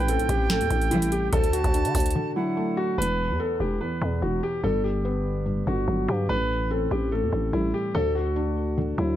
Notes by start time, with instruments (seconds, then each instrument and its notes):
Already playing: felt piano A2, flute G5
0.00 808-style bass A1
0.08 felt piano C4, grand piano A4, closed hi-hat
0.19 808-style bass B1, closed hi-hat
0.29 808-style bass A1, grand piano G4, kick, closed hi-hat
0.50 felt piano A2, grand piano A4, snare, closed hi-hat
0.61 808-style bass E2, closed hi-hat
0.70 808-style bass A1, felt piano E3, kick, closed hi-hat
0.81 closed hi-hat
0.91 string section C2 A2 E3, felt piano G3, grand piano E4, closed hi-hat
1.02 closed hi-hat
1.12 grand piano G4, closed hi-hat
1.32 808-style bass D2, felt piano D3, grand piano A4, flute A5, kick, closed hi-hat
1.44 closed hi-hat
1.53 grand piano F#4, closed hi-hat
1.64 808-style bass D2, kick, closed hi-hat
1.74 felt piano D4, closed hi-hat
1.85 808-style bass D3, closed hi-hat
1.95 808-style bass D2, kick, closed hi-hat, open hi-hat
2.00 closed hi-hat
2.06 closed hi-hat
2.11 closed hi-hat
2.15 felt piano D3
2.36 felt piano F#3, grand piano E4, flute F#5
2.57 felt piano A3
2.77 grand piano F#4
2.98 808-style bass E1, felt piano E2, grand piano B4, closed hi-hat
3.30 808-style bass E2
3.40 felt piano B3, grand piano A4
3.60 808-style bass E1, grand piano G4
3.81 felt piano E2, grand piano B4
4.02 808-style bass E2, felt piano B2
4.22 808-style bass E1, felt piano E3, grand piano F#4
4.43 grand piano G4
4.64 808-style bass G1, felt piano G2, grand piano A4
4.84 grand piano G4
5.05 felt piano B3
5.46 felt piano G2
5.67 808-style bass G1, felt piano D3, grand piano F#4
5.88 808-style bass G1, felt piano F#3
6.08 808-style bass G2, grand piano G4
6.29 808-style bass A1, felt piano A2, grand piano B4
6.70 felt piano C4, grand piano A4
6.91 808-style bass A1, grand piano G4
7.12 felt piano A2, grand piano A4
7.23 808-style bass E2
7.33 808-style bass A1, felt piano E3
7.53 808-style bass A1, felt piano G3, grand piano E4
7.74 grand piano G4
7.95 808-style bass D2, felt piano D3, grand piano A4
8.15 grand piano F#4
8.36 felt piano D4
8.78 felt piano D3
8.98 808-style bass D2, felt piano F#3, grand piano E4